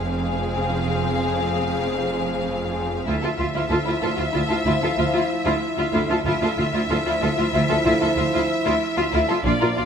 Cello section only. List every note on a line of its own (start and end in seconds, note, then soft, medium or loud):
0.00 3.03 F2 soft
3.07 3.13 D2 medium
3.23 3.29 D2 soft
3.39 3.45 D2 soft
3.55 3.61 D2 medium
3.71 3.77 D2 soft
3.87 3.93 D2 medium
4.03 4.09 D2 soft
4.19 4.25 D2 soft
4.35 4.41 D2 medium
4.50 4.56 D2 soft
4.65 4.72 D2 medium
4.82 4.89 D2 soft
4.98 5.04 D2 soft
5.13 5.20 D2 medium
5.46 5.52 D2 medium
5.78 5.84 D2 medium
5.93 6.00 D2 medium
6.10 6.16 D2 soft
6.26 6.32 D2 medium
6.42 6.48 D2 soft
6.58 6.64 D2 soft
6.74 6.80 D2 medium
6.90 6.97 D2 soft
7.07 7.13 D2 medium
7.22 7.28 D2 soft
7.38 7.45 D2 soft
7.55 7.61 D2 medium
7.70 7.77 D2 soft
7.87 7.93 D2 medium
8.03 8.09 D2 soft
8.18 8.24 D2 soft
8.35 8.41 D2 medium
8.66 8.72 D2 medium
8.98 9.04 D2 soft
9.14 9.20 D2 medium
9.30 9.36 D2 soft
9.46 9.52 A#2 medium
9.62 9.68 A#2 soft
9.78 9.84 A#2 soft